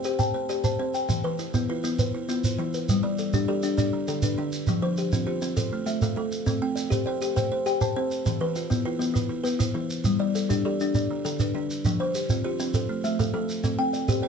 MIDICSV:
0, 0, Header, 1, 4, 480
1, 0, Start_track
1, 0, Tempo, 298805
1, 1751, Time_signature, 12, 3, 24, 8
1, 22939, End_track
2, 0, Start_track
2, 0, Title_t, "Kalimba"
2, 0, Program_c, 0, 108
2, 0, Note_on_c, 0, 72, 80
2, 0, Note_on_c, 0, 79, 67
2, 311, Note_off_c, 0, 72, 0
2, 318, Note_on_c, 0, 81, 65
2, 549, Note_off_c, 0, 79, 0
2, 551, Note_on_c, 0, 72, 80
2, 1014, Note_off_c, 0, 81, 0
2, 1031, Note_off_c, 0, 72, 0
2, 1033, Note_on_c, 0, 81, 68
2, 1279, Note_on_c, 0, 72, 78
2, 1752, Note_off_c, 0, 81, 0
2, 1755, Note_off_c, 0, 72, 0
2, 1997, Note_on_c, 0, 71, 70
2, 2001, Note_on_c, 0, 52, 81
2, 2477, Note_off_c, 0, 52, 0
2, 2480, Note_on_c, 0, 64, 62
2, 2707, Note_off_c, 0, 64, 0
2, 2709, Note_off_c, 0, 71, 0
2, 2726, Note_on_c, 0, 64, 89
2, 2728, Note_on_c, 0, 71, 70
2, 3195, Note_on_c, 0, 72, 65
2, 3199, Note_off_c, 0, 64, 0
2, 3440, Note_off_c, 0, 71, 0
2, 3447, Note_on_c, 0, 64, 82
2, 3914, Note_off_c, 0, 72, 0
2, 3920, Note_off_c, 0, 64, 0
2, 3933, Note_on_c, 0, 72, 65
2, 4168, Note_on_c, 0, 64, 85
2, 4641, Note_off_c, 0, 64, 0
2, 4643, Note_off_c, 0, 72, 0
2, 4868, Note_on_c, 0, 55, 92
2, 4872, Note_on_c, 0, 74, 72
2, 5350, Note_off_c, 0, 55, 0
2, 5360, Note_on_c, 0, 67, 67
2, 5575, Note_off_c, 0, 67, 0
2, 5575, Note_off_c, 0, 74, 0
2, 5595, Note_on_c, 0, 67, 90
2, 5595, Note_on_c, 0, 74, 67
2, 6046, Note_off_c, 0, 74, 0
2, 6065, Note_on_c, 0, 74, 70
2, 6074, Note_off_c, 0, 67, 0
2, 6313, Note_on_c, 0, 50, 79
2, 6549, Note_off_c, 0, 74, 0
2, 6793, Note_off_c, 0, 50, 0
2, 6800, Note_on_c, 0, 71, 71
2, 7031, Note_on_c, 0, 62, 82
2, 7480, Note_off_c, 0, 62, 0
2, 7499, Note_on_c, 0, 62, 60
2, 7516, Note_off_c, 0, 71, 0
2, 7747, Note_on_c, 0, 53, 86
2, 7753, Note_on_c, 0, 72, 75
2, 7986, Note_off_c, 0, 62, 0
2, 8230, Note_off_c, 0, 53, 0
2, 8238, Note_on_c, 0, 65, 64
2, 8440, Note_off_c, 0, 65, 0
2, 8442, Note_off_c, 0, 72, 0
2, 8460, Note_on_c, 0, 65, 86
2, 8462, Note_on_c, 0, 72, 74
2, 8936, Note_off_c, 0, 72, 0
2, 8946, Note_off_c, 0, 65, 0
2, 8955, Note_on_c, 0, 72, 74
2, 9199, Note_on_c, 0, 57, 84
2, 9433, Note_off_c, 0, 72, 0
2, 9675, Note_off_c, 0, 57, 0
2, 9683, Note_on_c, 0, 77, 76
2, 9914, Note_on_c, 0, 69, 84
2, 10380, Note_off_c, 0, 69, 0
2, 10397, Note_off_c, 0, 77, 0
2, 10399, Note_on_c, 0, 69, 68
2, 10632, Note_on_c, 0, 60, 85
2, 10635, Note_on_c, 0, 79, 80
2, 10875, Note_off_c, 0, 69, 0
2, 11112, Note_off_c, 0, 60, 0
2, 11117, Note_on_c, 0, 72, 75
2, 11333, Note_off_c, 0, 79, 0
2, 11338, Note_off_c, 0, 72, 0
2, 11353, Note_on_c, 0, 79, 69
2, 11358, Note_on_c, 0, 72, 91
2, 11816, Note_off_c, 0, 79, 0
2, 11835, Note_off_c, 0, 72, 0
2, 11835, Note_on_c, 0, 79, 73
2, 12075, Note_on_c, 0, 72, 90
2, 12553, Note_off_c, 0, 72, 0
2, 12553, Note_off_c, 0, 79, 0
2, 12553, Note_on_c, 0, 81, 70
2, 12794, Note_on_c, 0, 72, 90
2, 13248, Note_off_c, 0, 72, 0
2, 13267, Note_on_c, 0, 72, 65
2, 13272, Note_off_c, 0, 81, 0
2, 13505, Note_on_c, 0, 52, 92
2, 13511, Note_on_c, 0, 71, 75
2, 13750, Note_off_c, 0, 72, 0
2, 13981, Note_on_c, 0, 64, 68
2, 13988, Note_off_c, 0, 52, 0
2, 14202, Note_off_c, 0, 71, 0
2, 14206, Note_off_c, 0, 64, 0
2, 14222, Note_on_c, 0, 71, 70
2, 14226, Note_on_c, 0, 64, 88
2, 14686, Note_off_c, 0, 71, 0
2, 14705, Note_on_c, 0, 71, 69
2, 14709, Note_off_c, 0, 64, 0
2, 14929, Note_on_c, 0, 64, 81
2, 15420, Note_on_c, 0, 72, 68
2, 15421, Note_off_c, 0, 64, 0
2, 15429, Note_off_c, 0, 71, 0
2, 15661, Note_on_c, 0, 64, 83
2, 16109, Note_off_c, 0, 64, 0
2, 16129, Note_on_c, 0, 64, 62
2, 16146, Note_off_c, 0, 72, 0
2, 16376, Note_on_c, 0, 55, 83
2, 16377, Note_on_c, 0, 74, 70
2, 16621, Note_off_c, 0, 64, 0
2, 16854, Note_on_c, 0, 67, 63
2, 16864, Note_off_c, 0, 55, 0
2, 17090, Note_off_c, 0, 74, 0
2, 17091, Note_off_c, 0, 67, 0
2, 17109, Note_on_c, 0, 74, 74
2, 17110, Note_on_c, 0, 67, 79
2, 17573, Note_off_c, 0, 74, 0
2, 17592, Note_off_c, 0, 67, 0
2, 17592, Note_on_c, 0, 74, 69
2, 17840, Note_on_c, 0, 50, 79
2, 18073, Note_off_c, 0, 74, 0
2, 18317, Note_off_c, 0, 50, 0
2, 18327, Note_on_c, 0, 71, 74
2, 18552, Note_on_c, 0, 62, 84
2, 19013, Note_off_c, 0, 62, 0
2, 19032, Note_on_c, 0, 62, 67
2, 19040, Note_off_c, 0, 71, 0
2, 19282, Note_on_c, 0, 72, 74
2, 19284, Note_on_c, 0, 53, 83
2, 19513, Note_off_c, 0, 62, 0
2, 19758, Note_on_c, 0, 65, 69
2, 19759, Note_off_c, 0, 53, 0
2, 19970, Note_off_c, 0, 72, 0
2, 19972, Note_off_c, 0, 65, 0
2, 19990, Note_on_c, 0, 72, 69
2, 19991, Note_on_c, 0, 65, 86
2, 20449, Note_off_c, 0, 72, 0
2, 20468, Note_on_c, 0, 72, 72
2, 20472, Note_off_c, 0, 65, 0
2, 20710, Note_on_c, 0, 57, 80
2, 20951, Note_off_c, 0, 72, 0
2, 21191, Note_off_c, 0, 57, 0
2, 21195, Note_on_c, 0, 77, 76
2, 21425, Note_on_c, 0, 69, 86
2, 21895, Note_off_c, 0, 69, 0
2, 21914, Note_off_c, 0, 77, 0
2, 21914, Note_on_c, 0, 69, 66
2, 22146, Note_on_c, 0, 79, 77
2, 22148, Note_on_c, 0, 60, 86
2, 22393, Note_off_c, 0, 69, 0
2, 22630, Note_off_c, 0, 60, 0
2, 22630, Note_on_c, 0, 72, 69
2, 22838, Note_off_c, 0, 79, 0
2, 22843, Note_off_c, 0, 72, 0
2, 22858, Note_on_c, 0, 79, 66
2, 22863, Note_on_c, 0, 72, 90
2, 22939, Note_off_c, 0, 72, 0
2, 22939, Note_off_c, 0, 79, 0
2, 22939, End_track
3, 0, Start_track
3, 0, Title_t, "Kalimba"
3, 0, Program_c, 1, 108
3, 0, Note_on_c, 1, 74, 60
3, 78, Note_on_c, 1, 72, 65
3, 82, Note_on_c, 1, 67, 89
3, 302, Note_on_c, 1, 79, 73
3, 543, Note_off_c, 1, 74, 0
3, 556, Note_off_c, 1, 67, 0
3, 790, Note_on_c, 1, 67, 86
3, 793, Note_on_c, 1, 74, 73
3, 794, Note_off_c, 1, 72, 0
3, 1027, Note_off_c, 1, 79, 0
3, 1027, Note_on_c, 1, 72, 64
3, 1270, Note_off_c, 1, 67, 0
3, 1273, Note_on_c, 1, 60, 80
3, 1512, Note_off_c, 1, 74, 0
3, 1515, Note_on_c, 1, 79, 65
3, 1745, Note_on_c, 1, 52, 85
3, 1749, Note_off_c, 1, 72, 0
3, 1752, Note_off_c, 1, 60, 0
3, 1993, Note_off_c, 1, 79, 0
3, 1994, Note_on_c, 1, 71, 69
3, 2229, Note_off_c, 1, 52, 0
3, 2233, Note_on_c, 1, 64, 59
3, 2473, Note_on_c, 1, 59, 81
3, 2713, Note_off_c, 1, 71, 0
3, 2722, Note_on_c, 1, 65, 59
3, 2933, Note_off_c, 1, 64, 0
3, 2934, Note_off_c, 1, 59, 0
3, 2952, Note_on_c, 1, 64, 72
3, 2953, Note_on_c, 1, 59, 78
3, 3197, Note_on_c, 1, 71, 66
3, 3433, Note_off_c, 1, 59, 0
3, 3437, Note_off_c, 1, 65, 0
3, 3672, Note_off_c, 1, 64, 0
3, 3676, Note_on_c, 1, 59, 86
3, 3677, Note_on_c, 1, 65, 71
3, 3915, Note_off_c, 1, 71, 0
3, 4153, Note_on_c, 1, 52, 81
3, 4154, Note_off_c, 1, 59, 0
3, 4395, Note_off_c, 1, 65, 0
3, 4405, Note_on_c, 1, 71, 62
3, 4633, Note_off_c, 1, 52, 0
3, 4649, Note_on_c, 1, 55, 90
3, 4879, Note_off_c, 1, 71, 0
3, 5121, Note_off_c, 1, 55, 0
3, 5125, Note_on_c, 1, 69, 58
3, 5361, Note_on_c, 1, 62, 85
3, 5582, Note_off_c, 1, 69, 0
3, 5602, Note_on_c, 1, 69, 69
3, 5815, Note_off_c, 1, 62, 0
3, 5834, Note_on_c, 1, 62, 85
3, 6056, Note_off_c, 1, 62, 0
3, 6075, Note_on_c, 1, 62, 75
3, 6317, Note_off_c, 1, 69, 0
3, 6558, Note_on_c, 1, 69, 74
3, 6560, Note_on_c, 1, 50, 84
3, 6773, Note_off_c, 1, 62, 0
3, 6792, Note_on_c, 1, 62, 72
3, 7026, Note_off_c, 1, 50, 0
3, 7045, Note_on_c, 1, 50, 78
3, 7275, Note_off_c, 1, 69, 0
3, 7512, Note_off_c, 1, 62, 0
3, 7519, Note_off_c, 1, 50, 0
3, 7527, Note_on_c, 1, 53, 90
3, 7749, Note_on_c, 1, 72, 68
3, 7999, Note_off_c, 1, 53, 0
3, 8005, Note_on_c, 1, 67, 65
3, 8234, Note_on_c, 1, 60, 89
3, 8442, Note_off_c, 1, 67, 0
3, 8462, Note_on_c, 1, 67, 63
3, 8470, Note_off_c, 1, 72, 0
3, 8689, Note_off_c, 1, 60, 0
3, 8708, Note_on_c, 1, 60, 84
3, 8942, Note_on_c, 1, 69, 71
3, 8950, Note_off_c, 1, 60, 0
3, 9187, Note_off_c, 1, 67, 0
3, 9416, Note_on_c, 1, 57, 83
3, 9420, Note_on_c, 1, 76, 71
3, 9653, Note_off_c, 1, 69, 0
3, 9672, Note_on_c, 1, 69, 72
3, 9881, Note_off_c, 1, 57, 0
3, 9901, Note_on_c, 1, 57, 84
3, 10146, Note_off_c, 1, 76, 0
3, 10382, Note_on_c, 1, 60, 94
3, 10386, Note_off_c, 1, 57, 0
3, 10392, Note_off_c, 1, 69, 0
3, 10853, Note_on_c, 1, 74, 64
3, 10867, Note_off_c, 1, 60, 0
3, 11089, Note_on_c, 1, 67, 88
3, 11319, Note_off_c, 1, 74, 0
3, 11338, Note_on_c, 1, 74, 69
3, 11571, Note_off_c, 1, 67, 0
3, 11591, Note_on_c, 1, 67, 82
3, 11828, Note_on_c, 1, 72, 76
3, 12065, Note_off_c, 1, 74, 0
3, 12071, Note_off_c, 1, 67, 0
3, 12306, Note_on_c, 1, 67, 92
3, 12310, Note_on_c, 1, 79, 70
3, 12528, Note_off_c, 1, 72, 0
3, 12548, Note_on_c, 1, 72, 74
3, 12789, Note_off_c, 1, 67, 0
3, 12795, Note_on_c, 1, 60, 82
3, 13031, Note_off_c, 1, 79, 0
3, 13269, Note_on_c, 1, 52, 89
3, 13270, Note_off_c, 1, 72, 0
3, 13273, Note_off_c, 1, 60, 0
3, 13512, Note_on_c, 1, 71, 74
3, 13749, Note_on_c, 1, 65, 65
3, 13750, Note_off_c, 1, 52, 0
3, 13977, Note_on_c, 1, 59, 86
3, 14207, Note_off_c, 1, 65, 0
3, 14226, Note_on_c, 1, 65, 71
3, 14232, Note_off_c, 1, 71, 0
3, 14427, Note_off_c, 1, 59, 0
3, 14446, Note_on_c, 1, 59, 86
3, 14679, Note_on_c, 1, 64, 72
3, 14939, Note_off_c, 1, 59, 0
3, 14949, Note_off_c, 1, 65, 0
3, 15157, Note_on_c, 1, 71, 73
3, 15161, Note_on_c, 1, 59, 78
3, 15387, Note_off_c, 1, 64, 0
3, 15406, Note_on_c, 1, 64, 69
3, 15651, Note_on_c, 1, 52, 77
3, 15657, Note_off_c, 1, 59, 0
3, 15895, Note_off_c, 1, 71, 0
3, 16139, Note_off_c, 1, 64, 0
3, 16142, Note_off_c, 1, 52, 0
3, 16147, Note_on_c, 1, 55, 87
3, 16385, Note_on_c, 1, 74, 72
3, 16629, Note_on_c, 1, 69, 68
3, 16630, Note_off_c, 1, 55, 0
3, 16867, Note_on_c, 1, 62, 89
3, 17092, Note_off_c, 1, 69, 0
3, 17109, Note_off_c, 1, 74, 0
3, 17111, Note_on_c, 1, 69, 66
3, 17350, Note_off_c, 1, 62, 0
3, 17366, Note_on_c, 1, 62, 84
3, 17568, Note_off_c, 1, 62, 0
3, 17587, Note_on_c, 1, 62, 67
3, 17832, Note_off_c, 1, 69, 0
3, 18069, Note_on_c, 1, 69, 74
3, 18071, Note_on_c, 1, 50, 90
3, 18287, Note_off_c, 1, 62, 0
3, 18306, Note_on_c, 1, 62, 68
3, 18527, Note_off_c, 1, 50, 0
3, 18546, Note_on_c, 1, 50, 78
3, 18791, Note_off_c, 1, 69, 0
3, 19030, Note_off_c, 1, 50, 0
3, 19030, Note_off_c, 1, 62, 0
3, 19051, Note_on_c, 1, 53, 94
3, 19276, Note_on_c, 1, 72, 74
3, 19518, Note_on_c, 1, 67, 60
3, 19522, Note_off_c, 1, 53, 0
3, 19758, Note_on_c, 1, 60, 83
3, 19978, Note_off_c, 1, 67, 0
3, 19995, Note_off_c, 1, 72, 0
3, 19997, Note_on_c, 1, 67, 63
3, 20215, Note_off_c, 1, 60, 0
3, 20234, Note_on_c, 1, 60, 91
3, 20474, Note_off_c, 1, 60, 0
3, 20477, Note_on_c, 1, 69, 78
3, 20715, Note_off_c, 1, 67, 0
3, 20948, Note_on_c, 1, 76, 80
3, 20949, Note_on_c, 1, 57, 89
3, 21182, Note_off_c, 1, 69, 0
3, 21201, Note_on_c, 1, 69, 78
3, 21406, Note_off_c, 1, 57, 0
3, 21425, Note_on_c, 1, 57, 84
3, 21671, Note_off_c, 1, 76, 0
3, 21907, Note_on_c, 1, 60, 88
3, 21909, Note_off_c, 1, 57, 0
3, 21917, Note_off_c, 1, 69, 0
3, 22146, Note_on_c, 1, 79, 76
3, 22383, Note_on_c, 1, 74, 65
3, 22390, Note_off_c, 1, 60, 0
3, 22625, Note_on_c, 1, 67, 90
3, 22829, Note_off_c, 1, 74, 0
3, 22848, Note_on_c, 1, 74, 61
3, 22869, Note_off_c, 1, 79, 0
3, 22939, Note_off_c, 1, 67, 0
3, 22939, Note_off_c, 1, 74, 0
3, 22939, End_track
4, 0, Start_track
4, 0, Title_t, "Shekere"
4, 61, Note_on_c, 9, 82, 60
4, 222, Note_off_c, 9, 82, 0
4, 308, Note_on_c, 9, 82, 83
4, 469, Note_off_c, 9, 82, 0
4, 794, Note_on_c, 9, 82, 62
4, 954, Note_off_c, 9, 82, 0
4, 1027, Note_on_c, 9, 82, 81
4, 1188, Note_off_c, 9, 82, 0
4, 1515, Note_on_c, 9, 82, 57
4, 1675, Note_off_c, 9, 82, 0
4, 1754, Note_on_c, 9, 82, 87
4, 1914, Note_off_c, 9, 82, 0
4, 2229, Note_on_c, 9, 82, 59
4, 2389, Note_off_c, 9, 82, 0
4, 2474, Note_on_c, 9, 82, 73
4, 2635, Note_off_c, 9, 82, 0
4, 2958, Note_on_c, 9, 82, 64
4, 3118, Note_off_c, 9, 82, 0
4, 3192, Note_on_c, 9, 82, 83
4, 3353, Note_off_c, 9, 82, 0
4, 3680, Note_on_c, 9, 82, 62
4, 3841, Note_off_c, 9, 82, 0
4, 3919, Note_on_c, 9, 82, 86
4, 4079, Note_off_c, 9, 82, 0
4, 4398, Note_on_c, 9, 82, 59
4, 4559, Note_off_c, 9, 82, 0
4, 4639, Note_on_c, 9, 82, 89
4, 4800, Note_off_c, 9, 82, 0
4, 5110, Note_on_c, 9, 82, 60
4, 5270, Note_off_c, 9, 82, 0
4, 5353, Note_on_c, 9, 82, 76
4, 5514, Note_off_c, 9, 82, 0
4, 5829, Note_on_c, 9, 82, 60
4, 5989, Note_off_c, 9, 82, 0
4, 6070, Note_on_c, 9, 82, 74
4, 6231, Note_off_c, 9, 82, 0
4, 6549, Note_on_c, 9, 82, 52
4, 6709, Note_off_c, 9, 82, 0
4, 6783, Note_on_c, 9, 82, 77
4, 6944, Note_off_c, 9, 82, 0
4, 7264, Note_on_c, 9, 82, 47
4, 7424, Note_off_c, 9, 82, 0
4, 7500, Note_on_c, 9, 82, 70
4, 7661, Note_off_c, 9, 82, 0
4, 7985, Note_on_c, 9, 82, 51
4, 8146, Note_off_c, 9, 82, 0
4, 8232, Note_on_c, 9, 82, 76
4, 8393, Note_off_c, 9, 82, 0
4, 8704, Note_on_c, 9, 82, 60
4, 8864, Note_off_c, 9, 82, 0
4, 8947, Note_on_c, 9, 82, 81
4, 9107, Note_off_c, 9, 82, 0
4, 9428, Note_on_c, 9, 82, 61
4, 9589, Note_off_c, 9, 82, 0
4, 9664, Note_on_c, 9, 82, 81
4, 9824, Note_off_c, 9, 82, 0
4, 10147, Note_on_c, 9, 82, 50
4, 10308, Note_off_c, 9, 82, 0
4, 10387, Note_on_c, 9, 82, 73
4, 10548, Note_off_c, 9, 82, 0
4, 10870, Note_on_c, 9, 82, 57
4, 11031, Note_off_c, 9, 82, 0
4, 11107, Note_on_c, 9, 82, 79
4, 11268, Note_off_c, 9, 82, 0
4, 11590, Note_on_c, 9, 82, 60
4, 11751, Note_off_c, 9, 82, 0
4, 11835, Note_on_c, 9, 82, 74
4, 11996, Note_off_c, 9, 82, 0
4, 12314, Note_on_c, 9, 82, 55
4, 12474, Note_off_c, 9, 82, 0
4, 12547, Note_on_c, 9, 82, 77
4, 12708, Note_off_c, 9, 82, 0
4, 13026, Note_on_c, 9, 82, 47
4, 13187, Note_off_c, 9, 82, 0
4, 13267, Note_on_c, 9, 82, 69
4, 13428, Note_off_c, 9, 82, 0
4, 13747, Note_on_c, 9, 82, 57
4, 13908, Note_off_c, 9, 82, 0
4, 13991, Note_on_c, 9, 82, 67
4, 14152, Note_off_c, 9, 82, 0
4, 14472, Note_on_c, 9, 82, 56
4, 14633, Note_off_c, 9, 82, 0
4, 14710, Note_on_c, 9, 82, 74
4, 14870, Note_off_c, 9, 82, 0
4, 15180, Note_on_c, 9, 82, 63
4, 15341, Note_off_c, 9, 82, 0
4, 15422, Note_on_c, 9, 82, 84
4, 15583, Note_off_c, 9, 82, 0
4, 15904, Note_on_c, 9, 82, 57
4, 16064, Note_off_c, 9, 82, 0
4, 16133, Note_on_c, 9, 82, 85
4, 16294, Note_off_c, 9, 82, 0
4, 16627, Note_on_c, 9, 82, 52
4, 16788, Note_off_c, 9, 82, 0
4, 16871, Note_on_c, 9, 82, 71
4, 17032, Note_off_c, 9, 82, 0
4, 17352, Note_on_c, 9, 82, 59
4, 17512, Note_off_c, 9, 82, 0
4, 17582, Note_on_c, 9, 82, 80
4, 17743, Note_off_c, 9, 82, 0
4, 18076, Note_on_c, 9, 82, 63
4, 18236, Note_off_c, 9, 82, 0
4, 18305, Note_on_c, 9, 82, 80
4, 18466, Note_off_c, 9, 82, 0
4, 18803, Note_on_c, 9, 82, 59
4, 18964, Note_off_c, 9, 82, 0
4, 19030, Note_on_c, 9, 82, 83
4, 19191, Note_off_c, 9, 82, 0
4, 19508, Note_on_c, 9, 82, 58
4, 19669, Note_off_c, 9, 82, 0
4, 19749, Note_on_c, 9, 82, 81
4, 19910, Note_off_c, 9, 82, 0
4, 20232, Note_on_c, 9, 82, 61
4, 20393, Note_off_c, 9, 82, 0
4, 20463, Note_on_c, 9, 82, 79
4, 20623, Note_off_c, 9, 82, 0
4, 20952, Note_on_c, 9, 82, 60
4, 21112, Note_off_c, 9, 82, 0
4, 21197, Note_on_c, 9, 82, 76
4, 21357, Note_off_c, 9, 82, 0
4, 21671, Note_on_c, 9, 82, 55
4, 21832, Note_off_c, 9, 82, 0
4, 21908, Note_on_c, 9, 82, 72
4, 22068, Note_off_c, 9, 82, 0
4, 22386, Note_on_c, 9, 82, 56
4, 22547, Note_off_c, 9, 82, 0
4, 22623, Note_on_c, 9, 82, 80
4, 22783, Note_off_c, 9, 82, 0
4, 22939, End_track
0, 0, End_of_file